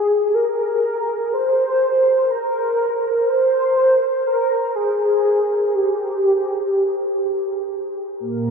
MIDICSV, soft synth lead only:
0, 0, Header, 1, 2, 480
1, 0, Start_track
1, 0, Tempo, 500000
1, 8165, End_track
2, 0, Start_track
2, 0, Title_t, "Soft synth lead"
2, 0, Program_c, 0, 80
2, 0, Note_on_c, 0, 68, 104
2, 328, Note_on_c, 0, 70, 93
2, 342, Note_off_c, 0, 68, 0
2, 1276, Note_on_c, 0, 72, 107
2, 1291, Note_off_c, 0, 70, 0
2, 2212, Note_on_c, 0, 70, 98
2, 2226, Note_off_c, 0, 72, 0
2, 3158, Note_on_c, 0, 72, 108
2, 3172, Note_off_c, 0, 70, 0
2, 4091, Note_off_c, 0, 72, 0
2, 4097, Note_on_c, 0, 70, 89
2, 4562, Note_on_c, 0, 68, 94
2, 4577, Note_off_c, 0, 70, 0
2, 5513, Note_on_c, 0, 67, 88
2, 5528, Note_off_c, 0, 68, 0
2, 7404, Note_off_c, 0, 67, 0
2, 7863, Note_on_c, 0, 70, 97
2, 8165, Note_off_c, 0, 70, 0
2, 8165, End_track
0, 0, End_of_file